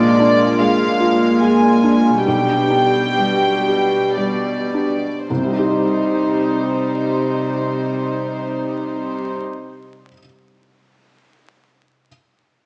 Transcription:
0.00 2.22 A#1 soft
0.00 2.20 A#2 soft
0.00 2.22 A#2 medium
0.00 2.22 G#3 soft
0.00 2.17 D4 soft
0.00 2.22 F4 soft
0.00 2.27 F4 soft
0.00 0.60 D5 medium
0.20 0.84 D4 soft
0.60 1.25 G#3 soft
0.60 1.42 F5 medium
1.00 1.66 F4 soft
1.42 2.09 G#3 soft
1.42 2.27 G#5 medium
1.83 2.26 D4 soft
2.09 5.24 B2 soft
2.13 5.34 G3 soft
2.18 5.29 D4 soft
2.22 4.97 G3 soft
2.22 5.55 G4 soft
2.22 4.96 G4 soft
2.22 4.13 G5 medium
2.26 5.25 B1 soft
2.26 4.97 B2 soft
2.70 3.46 D4 soft
3.18 3.97 G3 soft
3.67 4.51 G4 soft
4.17 5.06 G3 soft
4.17 5.28 D5 soft
4.74 5.29 D4 soft
5.28 10.07 C2 soft
5.28 10.06 C3 soft
5.28 9.36 C3 soft
5.28 9.36 G3 soft
5.28 9.36 D#4 soft
5.28 9.36 C5 soft
5.36 10.10 C3 soft
5.36 10.10 G3 soft
5.43 10.14 G3 soft
5.43 10.13 C4 soft
5.50 10.17 D#4 soft
5.56 10.20 G4 soft
5.56 10.21 G4 soft
5.63 10.23 D#5 soft
5.63 10.24 D#5 soft

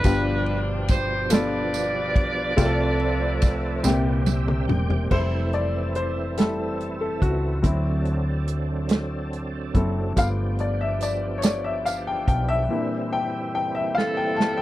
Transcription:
0.00 1.06 B3 medium
0.00 0.86 D4 medium
0.00 0.86 F4 medium
0.00 0.60 B4 loud
0.00 ride medium
0.04 2.16 G1 loud
0.04 1.27 G2 medium
0.04 2.54 B2 medium
0.04 2.54 F3 medium
0.04 1.06 D4 medium
0.04 2.54 D4 medium
0.04 1.06 F4 medium
0.04 1.06 G4 medium
0.04 2.54 G4 medium
0.04 kick loud
0.04 tambourine medium
0.46 ride soft
0.88 1.29 C5 medium
0.88 kick medium
0.88 snare soft
0.88 ride medium
0.88 tambourine soft
1.29 2.32 B3 medium
1.29 2.32 D4 medium
1.29 2.32 F4 medium
1.29 4.23 F4 medium
1.29 2.33 A4 medium
1.29 4.23 B4 medium
1.29 4.23 D5 loud
1.29 snare loud
1.29 ride medium
1.29 tambourine loud
1.74 ride soft
1.74 tambourine medium
2.16 2.55 B1 medium
2.16 kick loud
2.16 ride medium
2.57 3.81 C2 medium
2.57 3.80 C3 medium
2.57 3.84 F3 medium
2.57 3.59 A3 medium
2.57 3.84 A3 medium
2.57 3.59 C4 medium
2.57 3.83 C4 medium
2.57 3.59 F4 medium
2.57 2.65 G4 medium
2.57 2.65 G#4 medium
2.57 kick loud
2.57 ride medium
2.57 tambourine medium
2.65 3.88 A4 medium
2.65 3.63 A4 loud
3.00 ride soft
3.42 kick loud
3.42 snare soft
3.42 ride medium
3.42 tambourine medium
3.83 4.65 C2 loud
3.83 4.85 A#2 medium
3.83 5.07 C3 medium
3.83 5.11 G3 medium
3.83 4.85 C4 medium
3.83 5.09 C4 medium
3.83 5.11 G4 medium
3.83 4.86 G4 medium
3.83 4.86 E5 medium
3.83 snare medium
3.83 tambourine loud
4.26 4.66 E5 medium
4.26 high tom medium
4.26 tambourine medium
4.48 mid tom medium
4.68 5.07 E1 medium
4.68 5.08 G5 medium
4.68 mid tom medium
4.90 floor tom medium
5.10 7.18 F1 medium
5.10 7.59 E3 soft
5.10 6.36 G3 soft
5.10 6.37 A3 soft
5.10 7.60 C4 soft
5.10 7.60 E4 soft
5.10 6.36 E4 medium
5.10 7.60 A4 medium
5.10 5.55 C5 medium
5.10 kick medium
5.10 crash medium
5.53 5.97 D5 medium
5.53 closed hi-hat soft
5.95 6.05 C5 medium
5.95 closed hi-hat soft
6.37 6.76 G3 soft
6.37 6.76 A3 soft
6.37 6.76 E4 soft
6.37 6.99 A4 medium
6.37 snare medium
6.37 closed hi-hat medium
6.81 closed hi-hat soft
7.01 7.20 A4 medium
7.22 7.61 C#2 medium
7.22 8.44 F#4 medium
7.22 kick medium
7.22 closed hi-hat soft
7.62 9.71 D2 medium
7.62 9.72 F#3 soft
7.62 10.13 F#3 soft
7.62 9.73 C4 soft
7.62 10.13 C4 soft
7.62 10.13 D4 soft
7.62 9.74 E4 medium
7.62 10.13 A4 medium
7.62 kick loud
7.62 closed hi-hat medium
8.05 closed hi-hat soft
8.47 closed hi-hat soft
8.89 snare medium
8.89 closed hi-hat medium
9.33 closed hi-hat soft
9.74 10.14 F#1 medium
9.74 10.13 F#3 soft
9.74 10.13 C4 soft
9.74 10.13 E4 soft
9.74 10.19 A4 medium
9.74 kick medium
9.74 closed hi-hat soft
10.16 12.24 G1 medium
10.16 12.66 F3 soft
10.16 10.73 A3 soft
10.16 10.23 A#3 soft
10.16 10.73 B3 soft
10.16 12.66 D4 medium
10.16 10.73 F4 medium
10.16 12.66 G4 medium
10.16 10.28 F5 medium
10.16 kick medium
10.16 closed hi-hat medium
10.16 tambourine soft
10.23 12.69 B3 soft
10.59 10.79 D5 medium
10.59 closed hi-hat soft
10.81 11.00 E5 medium
11.01 11.36 D5 medium
11.01 closed hi-hat soft
11.01 tambourine soft
11.38 11.43 C#5 medium
11.42 11.65 D5 medium
11.42 snare medium
11.42 closed hi-hat medium
11.42 tambourine medium
11.64 11.86 E5 medium
11.86 12.07 F5 medium
11.86 closed hi-hat medium
11.86 tambourine soft
12.07 12.27 G5 medium
12.28 12.67 B1 medium
12.28 12.50 G5 medium
12.28 kick medium
12.28 closed hi-hat soft
12.48 13.14 E5 loud
12.69 14.62 A#2 medium
12.69 14.62 E3 medium
12.69 14.62 G3 medium
12.69 14.62 C4 soft
12.69 14.62 D4 soft
12.69 14.62 E4 medium
13.13 13.53 G5 medium
13.55 13.76 G5 medium
13.75 13.97 E5 medium
13.95 14.62 E4 medium
13.95 14.62 A4 medium
13.95 14.17 F5 medium
13.95 snare soft
14.17 14.39 G5 medium
14.37 14.42 A5 medium
14.37 snare medium
14.57 14.62 G5 medium

